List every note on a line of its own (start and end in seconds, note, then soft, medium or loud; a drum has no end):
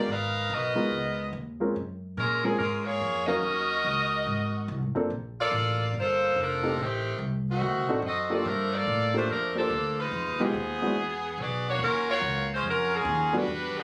0.08 0.49 G#1 medium
0.08 0.52 D#4 loud
0.08 0.52 A#4 loud
0.08 0.52 B4 medium
0.08 0.52 F5 loud
0.50 0.75 B1 medium
0.50 1.35 A#4 medium
0.54 1.36 B3 medium
0.54 0.94 F#4 medium
0.54 1.36 D#5 medium
0.75 1.30 G#3 medium
0.75 1.30 B3 medium
0.75 1.30 D#4 medium
0.75 1.30 F4 medium
0.75 1.30 A#4 medium
0.75 muted upright bass stroke soft
0.91 1.32 C#2 medium
1.33 1.74 D#2 medium
1.60 1.74 G#3 medium
1.60 1.74 C4 medium
1.60 1.74 C#4 medium
1.60 1.74 F4 medium
1.60 1.74 A#4 medium
1.76 2.16 F#2 medium
2.17 2.58 A#2 medium
2.17 2.44 G#3 medium
2.17 2.43 C#4 medium
2.17 2.43 F4 medium
2.17 2.43 A#4 medium
2.44 2.60 F3 medium
2.44 2.58 G#3 medium
2.44 2.60 A#3 medium
2.44 2.58 C4 soft
2.44 2.58 C#4 soft
2.44 2.58 C#4 medium
2.44 2.58 F4 soft
2.44 2.60 G#4 medium
2.44 2.58 A#4 medium
2.59 3.00 G#2 medium
2.59 2.84 G#3 medium
2.59 2.85 C#4 medium
2.59 2.84 F4 medium
2.59 2.84 A#4 medium
2.85 3.28 A#3 medium
2.85 3.27 F4 medium
2.85 3.28 G#4 medium
2.85 3.28 C#5 loud
3.01 3.42 F2 medium
3.27 3.81 F#3 medium
3.27 3.81 C#4 medium
3.27 4.22 C#4 medium
3.27 3.82 D#4 medium
3.27 4.91 F#4 medium
3.27 4.91 A#4 loud
3.27 3.82 A#4 medium
3.27 4.91 D#5 loud
3.27 3.82 F5 medium
3.43 3.84 D#2 medium
3.85 4.25 C#2 medium
4.26 4.67 G#1 medium
4.68 4.84 C2 medium
4.82 4.95 G#1 medium
4.95 5.09 F#1 medium
4.95 5.09 A#3 medium
4.95 5.09 C4 medium
4.95 5.09 D4 medium
4.95 5.09 F4 medium
4.95 5.10 A4 medium
5.10 5.51 A#1 medium
5.40 5.92 A#3 loud
5.40 5.92 F4 loud
5.40 5.92 A4 medium
5.40 5.92 D5 loud
5.52 5.93 A1 medium
5.94 6.34 G1 medium
5.99 6.39 A#3 medium
5.99 6.39 F4 medium
5.99 6.39 A4 medium
5.99 6.39 C5 medium
6.36 6.76 F1 medium
6.42 6.81 F3 medium
6.42 6.81 D4 medium
6.42 6.81 A4 medium
6.42 6.81 A#4 medium
6.63 6.76 A3 medium
6.63 6.76 C4 medium
6.63 6.77 D#4 medium
6.63 6.77 G4 medium
6.63 6.77 A4 medium
6.77 7.18 A1 medium
6.82 7.22 D#3 medium
6.82 7.22 A3 medium
6.82 7.22 C4 medium
6.82 7.22 G4 medium
7.18 7.60 C2 medium
7.50 8.01 D#3 medium
7.50 8.01 A3 medium
7.50 8.01 C4 medium
7.50 8.01 F#4 medium
7.61 7.76 D2 medium
7.74 7.88 C2 medium
7.89 8.02 A1 medium
7.89 8.02 C4 medium
7.89 8.02 D4 medium
7.89 8.02 D#4 medium
7.89 8.02 F#4 medium
7.89 8.02 A4 medium
8.02 8.43 F#2 medium
8.06 8.30 C4 medium
8.06 8.30 F#4 medium
8.06 8.30 A4 medium
8.06 8.30 D#5 medium
8.30 8.43 A#3 medium
8.30 8.46 C4 medium
8.30 8.44 D4 medium
8.30 8.44 F4 medium
8.30 8.46 F#4 medium
8.30 8.44 G4 medium
8.30 8.44 A4 medium
8.30 8.47 A4 medium
8.30 8.46 D5 medium
8.45 8.86 G2 medium
8.45 8.73 F3 medium
8.45 8.73 A3 medium
8.45 8.73 D4 medium
8.45 8.73 A#4 medium
8.73 9.15 A#3 medium
8.73 9.15 F4 medium
8.73 9.15 A4 medium
8.73 9.15 D5 medium
8.87 9.27 A2 medium
9.14 9.29 A3 medium
9.14 9.27 A#3 medium
9.14 9.27 D4 medium
9.14 9.29 D4 medium
9.14 9.28 F4 medium
9.14 9.29 F4 medium
9.14 9.28 G4 medium
9.14 9.28 A4 medium
9.14 9.29 C5 medium
9.29 9.69 F2 medium
9.29 9.55 F3 medium
9.29 9.55 A3 medium
9.29 9.55 D4 medium
9.29 9.55 A#4 medium
9.55 9.69 A#3 medium
9.55 9.69 D4 medium
9.55 9.69 F4 medium
9.55 9.69 G4 medium
9.55 9.96 A4 medium
9.55 9.69 C5 medium
9.59 9.97 F3 medium
9.59 9.97 A#3 medium
9.59 9.97 D4 medium
9.70 10.11 D2 medium
10.00 10.41 G#3 medium
10.00 10.41 D#4 medium
10.00 10.41 F4 medium
10.00 10.41 B4 loud
10.12 10.26 F2 medium
10.26 10.40 D#2 medium
10.40 10.54 B1 medium
10.40 10.98 F3 medium
10.40 10.53 G#3 medium
10.40 10.53 B3 medium
10.40 11.40 B3 medium
10.40 10.53 D#4 medium
10.40 10.98 D#4 medium
10.40 10.54 F4 medium
10.40 10.54 G4 medium
10.40 11.40 G#4 medium
10.54 10.95 D#2 medium
10.82 10.95 G#3 medium
10.82 10.95 B3 medium
10.82 10.95 D4 medium
10.82 10.96 E4 medium
10.82 10.96 F#4 medium
10.96 11.37 E2 medium
11.38 11.78 B1 medium
11.38 11.67 B3 medium
11.38 11.67 F#4 medium
11.42 11.67 G#4 medium
11.42 11.67 D5 medium
11.69 11.82 A#3 medium
11.69 11.81 D4 medium
11.69 11.81 F#4 medium
11.69 11.81 C#5 medium
11.79 12.20 D#2 medium
11.83 12.07 F#3 medium
11.83 12.07 C#4 medium
11.83 12.07 F4 medium
11.83 12.07 A#4 loud
12.10 12.48 A#3 medium
12.10 12.48 F4 medium
12.10 12.48 F#4 medium
12.10 12.48 C#5 loud
12.21 12.62 C#2 medium
12.54 12.65 G#3 medium
12.54 12.65 C#4 medium
12.54 12.66 F4 medium
12.54 12.66 C5 medium
12.63 13.04 F2 medium
12.69 12.94 F#3 medium
12.69 12.94 C#4 medium
12.69 12.94 F4 medium
12.69 12.94 A#4 medium
12.96 13.35 F#3 medium
12.96 13.35 C#4 medium
12.96 13.35 F4 medium
12.96 13.35 G#4 medium
13.05 13.46 D#2 loud
13.33 13.46 G3 medium
13.33 13.46 A3 medium
13.33 13.46 B3 medium
13.33 13.47 D4 medium
13.33 13.47 F#4 medium
13.37 13.77 G3 medium
13.37 13.77 D4 medium
13.37 13.77 F#4 medium
13.37 13.77 B4 loud
13.47 13.73 E2 medium
13.74 13.83 D3 medium
13.74 13.83 F#4 medium
13.74 13.83 G4 loud
13.74 muted upright bass stroke soft
13.79 13.83 B3 medium